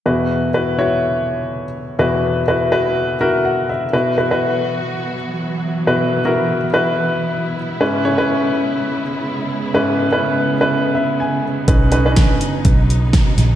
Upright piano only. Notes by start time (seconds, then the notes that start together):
0.06 E2 B2 E4 F#4 B4
0.54 E4 F#4 B4
0.78 E4 F#4 C#5
1.99 E2 B2 E4 F#4 B4
2.48 E4 F#4 B4
2.72 E4 F#4 B4
3.21 E4 F#4 A#4
3.45 F#5
3.69 E5
3.93 B2 E4 F#4 B4
4.18 E4 F#4 B4
4.31 E4 F#4 B4
5.87 B2 E4 F#4 B4
6.25 E4 F#4 A#4
6.73 E4 F#4 B4
7.81 G#2 C#4 E4 B4
8.05 C#4 E4 C#5
8.18 C#4 E4 B4
9.74 G#2 C#4 E4 B4
10.12 C#4 E4 B4
10.61 C#4 E4 B4
10.95 E5
11.20 G#5
11.68 C#4 D#4 B4
11.92 C#4 D#4 B4
12.05 C#4 D4 B4
12.11 D#4